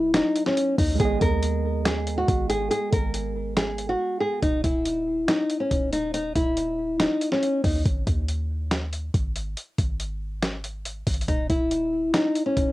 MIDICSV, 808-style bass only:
0, 0, Header, 1, 2, 480
1, 0, Start_track
1, 0, Tempo, 428571
1, 1118, Time_signature, 4, 2, 24, 8
1, 14248, End_track
2, 0, Start_track
2, 0, Title_t, "808-style bass"
2, 0, Program_c, 0, 38
2, 0, Note_on_c, 0, 27, 104
2, 244, Note_off_c, 0, 27, 0
2, 877, Note_on_c, 0, 39, 104
2, 1108, Note_off_c, 0, 39, 0
2, 1118, Note_on_c, 0, 32, 118
2, 1348, Note_off_c, 0, 32, 0
2, 1358, Note_on_c, 0, 39, 109
2, 2513, Note_off_c, 0, 39, 0
2, 2557, Note_on_c, 0, 32, 113
2, 3018, Note_off_c, 0, 32, 0
2, 3277, Note_on_c, 0, 32, 105
2, 4432, Note_off_c, 0, 32, 0
2, 4957, Note_on_c, 0, 27, 117
2, 5188, Note_off_c, 0, 27, 0
2, 5197, Note_on_c, 0, 27, 104
2, 5888, Note_off_c, 0, 27, 0
2, 6397, Note_on_c, 0, 27, 107
2, 7088, Note_off_c, 0, 27, 0
2, 7118, Note_on_c, 0, 27, 107
2, 7924, Note_off_c, 0, 27, 0
2, 8557, Note_on_c, 0, 39, 106
2, 8787, Note_off_c, 0, 39, 0
2, 8798, Note_on_c, 0, 32, 118
2, 9028, Note_off_c, 0, 32, 0
2, 9037, Note_on_c, 0, 39, 106
2, 10193, Note_off_c, 0, 39, 0
2, 10237, Note_on_c, 0, 32, 108
2, 10698, Note_off_c, 0, 32, 0
2, 10957, Note_on_c, 0, 32, 101
2, 12352, Note_off_c, 0, 32, 0
2, 12397, Note_on_c, 0, 32, 108
2, 12627, Note_off_c, 0, 32, 0
2, 12638, Note_on_c, 0, 27, 120
2, 12868, Note_off_c, 0, 27, 0
2, 12877, Note_on_c, 0, 27, 102
2, 13568, Note_off_c, 0, 27, 0
2, 14077, Note_on_c, 0, 27, 106
2, 14248, Note_off_c, 0, 27, 0
2, 14248, End_track
0, 0, End_of_file